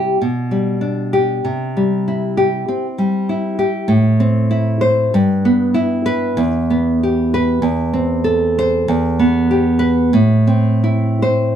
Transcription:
0.00 0.15 C3 medium
0.00 0.20 G3 medium
0.00 0.20 E4 soft
0.00 0.20 G4 medium
0.21 1.42 B2 medium
0.51 1.45 G3 soft
0.81 1.44 D4 medium
1.13 1.44 G4 medium
1.45 2.64 C3 medium
1.77 2.68 G3 medium
2.08 2.98 E4 medium
2.37 2.86 G4 medium
2.68 3.60 C4 medium
2.98 3.90 G3 medium
3.29 3.90 E4 medium
3.59 3.89 G4 medium
3.88 5.08 A2 medium
4.20 5.13 C4 medium
4.51 5.13 E4 medium
4.81 5.13 C5 medium
5.14 6.35 G2 medium
5.45 6.39 B3 medium
5.74 6.38 E4 medium
6.06 6.38 B4 medium
6.37 7.59 E2 medium
6.70 7.63 B3 medium
7.03 7.64 G4 medium
7.34 7.64 B4 medium
7.62 8.84 E2 medium
7.93 8.89 C4 medium
8.24 8.88 A4 medium
8.59 8.89 C5 medium
8.88 10.09 E2 medium
9.19 10.13 B3 medium
9.51 10.14 G4 medium
9.79 10.12 B4 medium
10.13 11.56 A2 medium
10.47 11.56 C4 medium
10.84 11.56 E4 medium
11.22 11.56 C5 medium

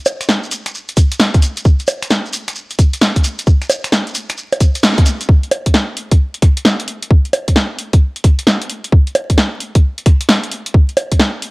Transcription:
0.06 open hi-hat loud
0.06 high bongo medium
0.06 shekere medium
0.21 finger snap medium
0.21 closed hi-hat medium
0.21 shekere soft
0.29 snare loud
0.29 shekere soft
0.43 shekere soft
0.51 open hi-hat loud
0.51 shekere medium
0.66 finger snap medium
0.66 closed hi-hat medium
0.66 shekere soft
0.75 shekere soft
0.88 closed hi-hat medium
0.88 shekere soft
0.97 kick loud
0.97 open hi-hat loud
0.97 shekere medium
1.12 closed hi-hat medium
1.12 shekere soft
1.19 snare loud
1.19 shekere soft
1.34 kick loud
1.34 closed hi-hat medium
1.34 shekere soft
1.42 open hi-hat loud
1.42 shekere medium
1.57 closed hi-hat medium
1.57 shekere soft
1.65 kick loud
1.65 shekere soft
1.79 closed hi-hat soft
1.79 shekere soft
1.87 open hi-hat loud
1.87 high bongo medium
1.87 shekere medium
2.02 finger snap medium
2.02 closed hi-hat medium
2.02 shekere soft
2.10 snare loud
2.10 shekere soft
2.26 shekere soft
2.33 open hi-hat loud
2.33 shekere medium
2.48 finger snap medium
2.48 closed hi-hat medium
2.48 shekere soft
2.55 shekere medium
2.70 closed hi-hat medium
2.70 shekere soft
2.79 kick loud
2.79 open hi-hat loud
2.79 shekere medium
2.93 closed hi-hat medium
2.93 shekere soft
3.01 snare loud
3.01 shekere medium
3.16 kick medium
3.16 closed hi-hat medium
3.16 shekere soft
3.24 open hi-hat loud
3.24 shekere medium
3.39 closed hi-hat medium
3.39 shekere soft
3.47 kick loud
3.47 shekere soft
3.62 finger snap soft
3.62 closed hi-hat soft
3.62 shekere soft
3.70 open hi-hat loud
3.70 high bongo medium
3.70 shekere medium
3.84 finger snap medium
3.84 closed hi-hat medium
3.84 shekere soft
3.92 snare loud
3.92 shekere medium
4.07 closed hi-hat soft
4.07 shekere soft
4.15 open hi-hat loud
4.15 shekere medium
4.29 finger snap medium
4.29 closed hi-hat medium
4.29 shekere soft
4.38 shekere soft
4.52 closed hi-hat medium
4.52 high bongo medium
4.52 shekere soft
4.60 kick loud
4.60 open hi-hat loud
4.60 shekere medium
4.75 closed hi-hat medium
4.75 shekere soft
4.83 snare loud
4.83 shekere medium
4.97 kick loud
4.97 closed hi-hat medium
4.97 shekere soft
5.06 open hi-hat loud
5.06 shekere medium
5.21 closed hi-hat medium
5.21 shekere soft
5.29 kick loud
5.43 closed hi-hat soft
5.51 open hi-hat loud
5.51 high bongo medium
5.66 kick medium
5.66 closed hi-hat medium
5.74 snare loud
5.97 open hi-hat loud
6.11 kick loud
6.11 closed hi-hat medium
6.34 closed hi-hat medium
6.42 finger snap soft
6.42 kick loud
6.42 open hi-hat loud
6.57 closed hi-hat medium
6.65 snare loud
6.80 closed hi-hat medium
6.88 open hi-hat loud
7.02 closed hi-hat medium
7.11 kick loud
7.25 closed hi-hat soft
7.33 open hi-hat loud
7.33 high bongo medium
7.48 kick medium
7.48 closed hi-hat medium
7.56 snare loud
7.79 open hi-hat medium
7.93 kick loud
7.93 closed hi-hat medium
8.16 closed hi-hat medium
8.24 finger snap soft
8.24 kick loud
8.24 open hi-hat loud
8.39 closed hi-hat medium
8.47 snare loud
8.62 closed hi-hat medium
8.70 open hi-hat loud
8.84 closed hi-hat medium
8.92 kick loud
9.07 closed hi-hat soft
9.15 open hi-hat loud
9.15 high bongo medium
9.30 kick medium
9.30 closed hi-hat medium
9.38 snare loud
9.60 open hi-hat medium
9.75 kick loud
9.75 closed hi-hat medium
9.98 closed hi-hat soft
10.06 finger snap soft
10.06 kick loud
10.06 open hi-hat loud
10.21 closed hi-hat medium
10.29 snare loud
10.43 closed hi-hat medium
10.51 open hi-hat medium
10.66 closed hi-hat medium
10.74 kick loud
10.89 closed hi-hat soft
10.97 open hi-hat loud
10.97 high bongo medium
11.12 kick medium
11.12 closed hi-hat medium
11.20 snare loud
11.42 open hi-hat medium

